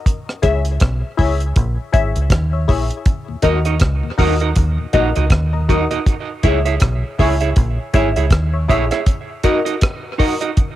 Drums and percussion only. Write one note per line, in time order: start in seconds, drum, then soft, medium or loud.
0.06 kick loud
0.06 closed hi-hat medium
0.29 cross-stick medium
0.43 kick medium
0.43 closed hi-hat medium
0.65 closed hi-hat medium
0.80 kick loud
0.80 cross-stick loud
0.80 closed hi-hat medium
1.19 kick medium
1.19 open hi-hat medium
1.40 closed hi-hat soft
1.56 kick loud
1.56 closed hi-hat medium
1.94 kick loud
1.94 closed hi-hat medium
2.16 closed hi-hat medium
2.30 kick loud
2.30 cross-stick loud
2.30 closed hi-hat loud
2.69 kick medium
2.69 open hi-hat medium
2.90 closed hi-hat medium
3.05 kick loud
3.05 closed hi-hat medium
3.42 kick medium
3.42 closed hi-hat medium
3.65 closed hi-hat medium
3.80 kick loud
3.80 cross-stick loud
3.80 closed hi-hat loud
4.19 kick medium
4.19 open hi-hat medium
4.40 closed hi-hat medium
4.55 kick loud
4.55 closed hi-hat medium
4.93 kick medium
4.93 closed hi-hat medium
5.15 closed hi-hat medium
5.30 kick loud
5.30 cross-stick loud
5.30 closed hi-hat medium
5.69 kick medium
5.69 closed hi-hat medium
5.91 closed hi-hat medium
6.06 kick loud
6.06 closed hi-hat medium
6.43 kick medium
6.43 closed hi-hat medium
6.66 closed hi-hat medium
6.80 kick loud
6.80 cross-stick loud
6.80 closed hi-hat medium
7.19 kick medium
7.19 open hi-hat medium
7.40 closed hi-hat medium
7.56 kick loud
7.56 closed hi-hat medium
7.94 kick loud
7.94 closed hi-hat medium
8.16 closed hi-hat medium
8.31 kick loud
8.31 cross-stick loud
8.31 closed hi-hat loud
8.70 kick medium
8.70 closed hi-hat medium
8.91 cross-stick medium
8.91 closed hi-hat medium
9.06 kick loud
9.06 closed hi-hat loud
9.43 kick medium
9.43 closed hi-hat medium
9.66 closed hi-hat medium
9.81 kick loud
9.81 cross-stick loud
9.81 closed hi-hat medium
10.20 kick medium
10.20 open hi-hat medium
10.41 closed hi-hat medium
10.57 kick loud
10.57 closed hi-hat medium